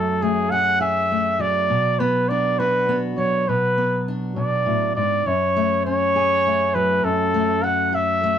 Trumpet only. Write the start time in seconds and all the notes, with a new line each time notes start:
Already playing: A4
0.22 G#4
0.51 F#5
0.81 E5
1.41 D5
2.00 B4
2.29 D5
2.59 B4
3.18 C#5
3.48 B4
4.37 D5
4.95 D5
5.27 C#5
5.85 C#5
6.75 B4
7.04 A4
7.63 F#5
7.95 E5